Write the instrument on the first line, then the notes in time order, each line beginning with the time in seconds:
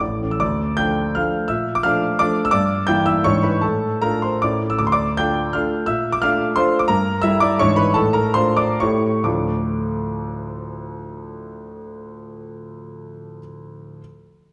grand piano
0.00 A1 A2 D5 D6
0.22 E3 A3 C#4
0.31 E6
0.40 D2 D5 D6
0.77 F3 A3 D4 G5 G6
1.15 F3 A3 D4 F5 F6
1.48 A#2 E5 E6
1.75 D6
1.83 F3 A3 D4 F5 F6
2.19 F3 A3 D4 D5 D6
2.45 E6
2.51 G2 D5 D6
2.87 E3 A#3 E4 G5 G6
3.06 E5 E6
3.24 G#2 E3 D4 E4 C#5 C#6
3.43 B4 B5
3.61 A2 A4 A5
4.02 A3 D4 F4 A#4 A#5
4.22 C5 C6
4.42 A2 A3 C#4 E4 D5 D6
4.70 E6
4.78 D2 D6
4.87 C6
4.92 D5 D6
5.17 A3 D4 F4 G5 G6
5.53 A3 D4 F4 F5 F6
5.86 A#2 E5 E6
6.12 D6
6.22 A3 D4 F4 F5 F6
6.56 A3 D4 F4 C5 C6
6.79 D6
6.88 G2 A#4 A#5
7.22 G3 E4 E5 E6
7.40 D5 D6
7.59 G#2 E3 D4 E4 C#5 C#6
7.76 B4 B5
7.94 A2 A4 A5
8.13 A#4 A#5
8.34 A3 D4 F4 C5 C6
8.57 D5 D6
8.80 A2 A3 E4 G4 C#5 C#6
9.24 D2 A2 F3 A3 D4 F4 D6